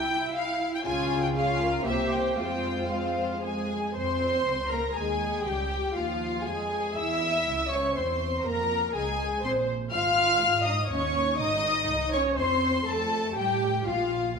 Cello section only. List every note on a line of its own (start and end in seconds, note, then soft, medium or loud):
0.00 0.85 E4 medium
0.86 1.34 F4 medium
1.35 1.85 F4 medium
1.86 2.37 G4 medium
2.38 3.44 F4 medium
3.44 3.93 G#3 medium
3.97 4.72 C4 medium
4.72 4.80 A#3 medium
4.97 5.45 G#3 medium
5.47 5.96 G3 medium
5.97 6.45 F3 medium
6.47 6.97 G#3 medium
6.99 7.71 E4 medium
7.73 7.97 C#4 medium
7.98 8.47 C4 medium
8.47 8.96 A#3 medium
8.96 9.43 G#3 medium
9.44 9.52 C4 medium
9.93 10.62 F4 loud
10.66 10.74 D#4 medium
10.91 11.38 C#4 loud
11.39 12.12 D#4 loud
12.14 12.38 C#4 medium
12.39 12.88 C4 medium
12.87 13.36 A3 medium
13.38 13.87 G3 medium
13.87 14.37 F3 medium